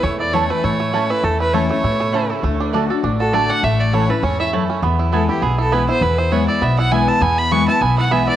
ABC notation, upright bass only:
X:1
M:4/4
L:1/8
Q:"Swing" 1/4=201
K:Emix
V:1 name="Upright bass" clef=bass
E,,4 A,,4 | E,,4 A,,4 | D,,4 A,,,4 | A,,,4 E,,4 |
E,,4 B,,,4 | E,,4 B,,,4 | E,,4 B,,,4 |]